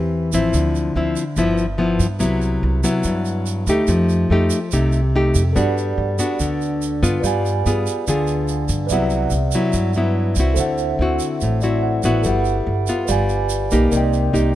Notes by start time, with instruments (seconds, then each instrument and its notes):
Already playing: upright bass E2, nylon-string guitar E3 C4 G4 B4
0.32 upright bass A1, nylon-string guitar F3 C4 E4, shaker
0.54 upright bass D2, nylon-string guitar D3, shaker
0.75 shaker
0.96 upright bass D2, nylon-string guitar F3 C4 E4
1.16 shaker
1.36 upright bass G1, nylon-string guitar G2 F3 B3 E4, shaker
1.58 shaker
1.78 nylon-string guitar F3 B3 E4
2.00 upright bass G2, shaker
2.19 upright bass C2, nylon-string guitar C3 F#3 B3 E4, shaker
2.41 shaker
2.63 upright bass C2
2.84 nylon-string guitar F#3 B3 E4, shaker
3.04 upright bass G2, nylon-string guitar G2, shaker
3.25 shaker
3.46 shaker
3.67 upright bass D2, nylon-string guitar A3 D#4 G4, shaker
3.87 upright bass F2, nylon-string guitar F3, shaker
4.09 shaker
4.30 upright bass F2, nylon-string guitar A3 D#4 G4
4.50 shaker
4.72 upright bass C2, nylon-string guitar C3 A3 D#4 G4, shaker
4.92 shaker
5.15 nylon-string guitar A3 D#4 G4
5.35 upright bass F2, shaker
5.53 upright bass G2, nylon-string guitar G3 B3 D4 F#4, tine electric piano A4 B4, shaker
5.57 tine electric piano D5 F#5
5.78 shaker
5.98 upright bass G2
6.19 nylon-string guitar B3 D4 F#4, shaker
6.40 upright bass D2, nylon-string guitar D3, shaker
6.61 shaker
6.82 shaker
7.03 upright bass G2, nylon-string guitar B3 F4, shaker
7.20 upright bass G2, nylon-string guitar G3, tine electric piano B4 D5, shaker
7.25 tine electric piano F5 G#5
7.46 shaker
7.66 upright bass G2, nylon-string guitar B3 F4 G#4, shaker
7.87 shaker
8.07 upright bass D2, nylon-string guitar D3 B3 F4 G#4, shaker
8.27 shaker
8.48 shaker
8.69 upright bass G2, shaker
8.87 upright bass C2, tine electric piano B4 D5 E5, shaker
8.92 nylon-string guitar C3 F#3 B3 E4, tine electric piano F#5
9.10 shaker
9.30 upright bass C2, shaker
9.52 nylon-string guitar F#3 B3 E4, shaker
9.73 upright bass G2, nylon-string guitar G2, shaker
9.93 nylon-string guitar F#3 B3, shaker
9.98 nylon-string guitar E4
10.36 upright bass C2, nylon-string guitar C4, shaker
10.40 nylon-string guitar E4 F#4
10.54 upright bass D2, tine electric piano A4 C5, shaker
10.58 nylon-string guitar D3, tine electric piano E5 F#5
10.78 shaker
10.99 upright bass D2, nylon-string guitar C4 E4 F#4
11.19 shaker
11.41 upright bass A1, nylon-string guitar A2, shaker
11.61 nylon-string guitar C4 E4 F#4, tine electric piano D5, shaker
11.83 tine electric piano F#5
12.03 upright bass A1, nylon-string guitar B3 E4 F#4, shaker
12.22 upright bass G1, nylon-string guitar G3, tine electric piano A4 B4, shaker
12.26 tine electric piano E5 F#5
12.45 shaker
12.67 upright bass G1
12.87 nylon-string guitar B3 F4, shaker
13.05 upright bass G1, nylon-string guitar G3, tine electric piano B4 D5, shaker
13.10 tine electric piano F5 G#5
13.29 shaker
13.49 shaker
13.71 upright bass B1, nylon-string guitar A#3 D#4 G4, shaker
13.91 upright bass C2, nylon-string guitar C3, tine electric piano A#4 D5, shaker
13.95 tine electric piano D#5 G5
14.13 shaker
14.33 upright bass C2, nylon-string guitar A#3 D#4 G4, shaker